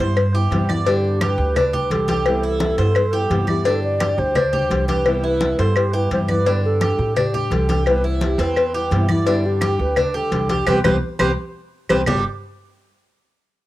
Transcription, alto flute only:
0.87 1.19 G4 loud
1.22 1.93 B4 loud
1.91 3.32 A4 medium
3.31 3.48 G4 medium
3.49 3.68 G4 medium
3.66 3.83 A4 loud
3.83 4.20 D5 loud
4.19 4.89 C5 loud
4.90 5.22 B4 loud
5.24 5.61 B4 medium
5.60 5.78 A4 loud
5.76 5.96 G4 medium
5.94 6.11 B4 medium
6.13 6.19 C5 medium
6.29 6.61 B4 loud
6.65 7.13 A4 loud
7.18 7.54 G4 medium
7.53 7.87 A4 medium
7.88 8.03 B4 loud
8.24 8.42 G4 medium
8.41 8.95 B4 loud
8.93 9.10 E4 medium
9.11 9.47 E4 medium
9.46 9.82 G4 medium
9.81 10.17 B4 medium
10.16 10.53 A4 medium
10.51 10.67 G4 medium
10.68 10.79 G4 loud
10.85 10.96 G4 medium
11.20 11.31 G4 medium
11.89 12.01 G4 medium

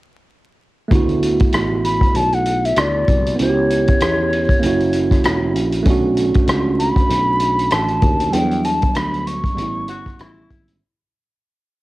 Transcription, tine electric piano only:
0.88 3.33 A3 medium
0.88 3.34 B3 medium
0.93 3.35 E4 medium
0.93 3.37 F#4 medium
3.35 4.58 B3 medium
3.35 4.60 C#4 medium
3.40 4.61 E4 medium
3.40 3.48 F#4 medium
3.49 4.65 G4 medium
4.59 5.82 A#3 medium
4.59 5.84 C#4 medium
4.64 5.85 E4 medium
4.64 5.86 F#4 medium
5.83 8.28 A3 medium
5.83 8.29 C#4 medium
5.88 8.31 D4 medium
5.88 8.32 F#4 medium
8.30 9.53 G3 medium
8.30 9.54 B3 medium
8.35 9.57 F#3 medium
8.35 9.55 D4 medium
9.54 10.77 G3 medium
9.54 10.78 B3 medium
9.59 10.80 C#4 medium
9.59 10.81 E4 medium

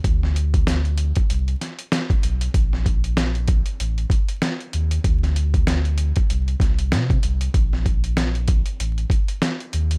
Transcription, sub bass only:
0.04 1.12 D2 loud
1.30 1.55 C2 loud
2.24 2.49 B1 medium
2.54 3.62 A#1 loud
3.80 4.05 A1 loud
4.74 4.99 D#2 medium
5.05 6.12 D2 loud
6.30 6.55 C2 loud
6.60 6.94 C2 medium
6.92 7.17 C3 loud
7.24 7.49 C2 medium
7.54 8.62 A#1 loud
8.80 9.05 A1 loud
9.74 9.98 D#2 loud

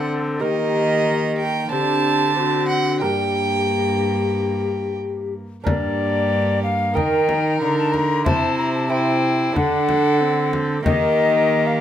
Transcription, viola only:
0.00 0.43 C4 medium
0.42 1.73 A#3 medium
1.72 2.36 C4 medium
2.37 3.04 C4 medium
3.03 5.46 A#3 medium
5.66 6.97 A#3 medium
6.96 8.26 D#4 medium
8.26 8.90 E4 medium
8.91 9.57 E4 medium
9.56 10.22 D4 medium
10.21 10.85 C4 medium
10.85 11.81 A#3 medium

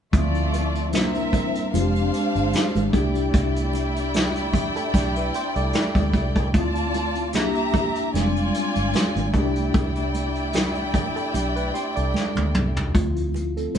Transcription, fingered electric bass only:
0.13 0.93 D2 medium
0.93 1.65 C2 loud
1.74 2.09 F1 medium
2.35 2.52 G1 medium
2.75 2.92 G#1 medium
2.94 3.29 C2 medium
3.34 4.71 C2 medium
4.94 5.29 B1 medium
5.56 5.72 C2 medium
5.95 6.12 D2 medium
6.13 6.54 C2 medium
6.54 7.34 D2 medium
7.34 8.05 C2 medium
8.14 8.50 F1 medium
8.76 8.92 G1 medium
9.16 9.32 G#1 medium
9.34 9.70 C2 medium
9.74 11.12 C2 medium
11.34 11.70 B1 medium
11.97 12.13 C2 medium
12.37 12.53 D2 medium
12.55 12.91 C2 medium
12.95 13.66 D2 medium

